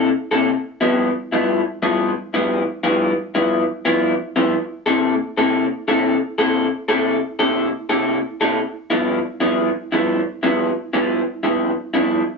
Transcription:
0.31 C3 A#3 E4 A4
0.81 G2 F3 B3 E4
1.32 G2 F3 B3 E4
1.82 G2 F3 B3 E4
2.34 G2 F3 B3 E4
2.83 G2 F3 B3 E4
3.35 G2 F3 B3 E4
3.85 G2 F3 B3 E4
4.36 G2 F3 B3 E4
4.86 C3 A#3 E4 A4
5.37 C3 A#3 E4 A4
5.88 C3 A#3 E4 A4
6.38 C3 A#3 E4 A4
6.88 C3 A#3 E4 A4
7.39 C3 A#3 E4 A4
7.89 C3 A#3 E4 A4
8.41 C3 A#3 E4 A4
8.90 G2 F3 B3 E4
9.40 G2 F3 B3 E4
9.92 G2 F3 B3 E4
10.43 G2 F3 B3 E4
10.93 G2 F3 B3 E4
11.43 G2 F3 B3 E4
11.94 G2 F3 B3 E4

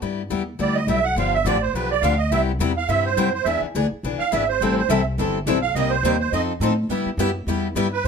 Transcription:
0.02 G2 G3 B3 E4 G4
0.30 E2 G3 B3 E4 G4
0.59 D2 G3 B3 E4 G4 D5
0.75 D#5
0.87 B1 G3 B3 E4 G4 E5
1.04 F#5
1.16 G1 D3 F3 B3 D4 G4 F5
1.34 E5
1.44 A1 D3 F3 B3 D4 G4 D5
1.61 C5
1.74 B1 D3 F3 B3 D4 G4 B4
1.91 D5
2.02 D2 D3 F3 B3 D4 G4 F5
2.18 D#5
2.31 C2 C3 G3 B3 E4 G4 E5
2.59 E2 C3 G3 B3 E4 G4
2.77 F5
2.88 G2 C3 G3 B3 E4 G4 E5
3.06 C5
3.17 F#2 C3 G3 B3 E4 G4
3.34 C5
3.45 E2 E3 B3 D4 G#4 E5
3.62 muted upright bass stroke
3.75 D2 E3 B3 D4 G#4
3.92 muted upright bass stroke
4.03 B1 E3 B3 D4 G#4
4.19 F5, muted upright bass stroke
4.32 G#1 E3 B3 D4 G#4 E5
4.48 C5
4.61 A1 E3 G3 C4 E4 A4
4.78 C5
4.89 C2 E3 G3 C4 E4 A4 E5
5.18 G1 E3 G3 C4 E4 A4
5.46 B1 E3 G3 C4 E4 A4
5.62 F5
5.75 C2 C3 G3 A#3 D#4 G4 D#5
5.90 C5
6.03 D#2 C3 G3 A#3 D#4 G4
6.20 C5
6.32 F2 F3 C4 D#4 A4 D#5
6.60 A2 F3 C4 D#4 A4
6.89 G2 G3 B3 E4 G4
7.06 muted upright bass stroke
7.17 F#2 G3 B3 E4 G4
7.47 E2 G3 B3 E4 G4
7.75 G2 G3 B3 E4 G4
7.93 B4
8.04 F#2

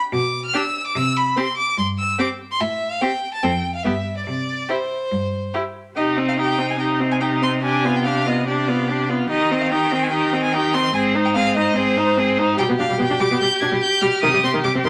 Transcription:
0.13 B2 D6
0.45 F6
0.54 D4 G4 E6
0.87 D6
0.95 C3 E6
1.17 B5
1.36 C4 G4 C6
1.57 D6
1.77 G2 C6
1.98 E6
2.19 C4 G4 D6
2.52 C6
2.60 A2 E5
2.92 F5
3.02 C4 G4 G5
3.34 A5
3.43 F2 C4 A4 G5
3.75 F5
3.84 G2 B3 G4 E5
4.17 D5
4.26 C3 D5
4.69 E4 G4 C5
5.11 G2
5.54 E4 G4
5.96 C3 D#4 G4 D#5
6.16 C4 D#4
6.29 F5
6.38 D#4 G4 G5
6.58 C4 D#4
6.70 G#5
6.80 D#4 G4 G5
7.00 C4 D#4
7.12 G#5
7.21 D#4 G4 G5
7.42 C4 D#4 C6
7.63 D4 G4 G#5
7.84 B3 F4
7.96 G5
8.05 D4 G4 F5
8.26 B3 F4 D#5
8.47 D4 G4 D5
8.68 B3 F4
8.88 D4 G4
9.09 B3 F4
9.30 D#3 D#4 G4 D#5
9.51 C4 D#4
9.62 F5
9.71 D#4 G4 G5
9.92 C4 D#4
10.03 G#5
10.11 D#4 G4 G5
10.33 C4 D#4
10.43 G#5
10.53 D#4 G4 G5
10.74 C4 D#4 C6
10.94 G#2 C4 G#4 G#5
11.15 D#4 C5
11.25 G5
11.34 C4 G#4 F5
11.56 D#4 C5 D#5
11.76 C4 G#4 C5
11.97 D#4 C5
12.18 C4 G#4
12.39 D#4 C5
12.58 B2 G3 G4 G5
12.69 B2 B3
12.79 B2 D4 F5
12.89 B2 G3
12.99 B2 B3 G5
13.10 B2 D4
13.20 B2 G3 D6
13.30 B2 B3
13.41 B2 G3 G6
13.61 B2 D4 G#6
13.71 B2 G3
13.81 G6
14.01 B2 G3 F6
14.23 C3 D#3 D#6
14.33 C3 G3
14.44 C3 C4 C6
14.54 C3 D#3
14.64 C3 G3 D6
14.74 C3 C4
14.84 C3 D#3 C6

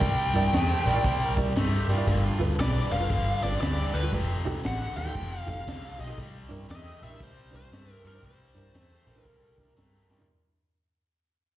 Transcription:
Already playing: G5
0.01 C2 C3 G3, kick, closed hi-hat
0.34 G2 E4 A#4 D5, closed hi-hat
0.53 E2 C3 A3 D#5, snare, closed hi-hat
0.73 C5
0.84 A#1 C3 G3 A#4 D5, closed hi-hat
0.90 D#4 E4 G4 A#4
0.95 A#4 D5
1.04 C2 C3 G3 C5, kick, snare, closed hi-hat
1.24 A#4
1.36 C2 E4 A#4 D5, kick, snare, closed hi-hat
1.40 G4
1.55 G2 C3 A3 D#4, snare, closed hi-hat
1.75 G4
1.87 G2 C3 G3 A#4 D5, closed hi-hat
1.92 F4
1.96 E4 A#4 D5
2.07 G1 G2 D3 A#3 D4 F4, kick, closed hi-hat
2.39 D2 F4 A4 B4, snare, closed hi-hat
2.58 B1 G2 E3 D5, snare, closed hi-hat
2.90 F1 G2 D3 A4 B4 F5, snare, closed hi-hat
2.99 F4 A4 B4
3.10 G1 G2 D3, kick, snare, closed hi-hat
3.42 G1 F4 A4 B4 D5, snare, closed hi-hat
3.61 D2 G2 E3 D5, snare, closed hi-hat
3.94 D2 G2 D3 A4 B4 D5, closed hi-hat
4.02 F4 A4 B4
4.12 F1 F2 C3, kick, closed hi-hat
4.45 C2 D#4 G4 A4, snare, closed hi-hat
4.63 A1 F2 D3 F#5, snare, closed hi-hat
4.96 D#2 F2 C3 G4 A4 G5, snare, closed hi-hat
5.05 D#4 G4 A4
5.15 F1 F2 C3, kick, snare, closed hi-hat
5.39 F5
5.46 F1 D#4 G4 A4 F5, kick, snare, closed hi-hat
5.66 C2 F2 D3, snare, closed hi-hat
5.98 B1 F2 C3 G4 A4 D#5, closed hi-hat
6.07 D#4 G4 A4
6.17 C2 C3 G3, kick, closed hi-hat
6.49 G2 D4 E4 A#4, snare, closed hi-hat
6.68 E2 C3 A3 D#5, snare, closed hi-hat
7.00 A#1 C3 G3 E4 A#4 E5, closed hi-hat
7.10 D4 E4 A#4
7.20 C2 C3 G3 C5, kick, closed hi-hat
7.51 C2 D4 E4 C5, closed hi-hat
7.55 C5, snare
7.72 G2 C3 A3, snare, closed hi-hat
8.03 G2 C3 G3 E4 A#4, closed hi-hat
8.07 A#4
8.13 D4 E4 C5
8.23 C2 C3 G3 C5, kick, closed hi-hat
8.55 G2 D4 E4 A#4, closed hi-hat
8.74 E2 C3 A3, snare, closed hi-hat
9.06 A#1 C3 G3 E4 A4 A#4, snare, closed hi-hat
9.16 D4 E4 A#4
9.25 C2 C3 G3 D4 F4 A4 A#4, kick, snare, closed hi-hat
9.58 C2 D4 E4 A#4, kick, snare, closed hi-hat
9.76 G2 C3 A3, snare, closed hi-hat
10.09 G2 C3 G3 E4 A#4, snare
10.18 D4 E4 A#4, floor tom

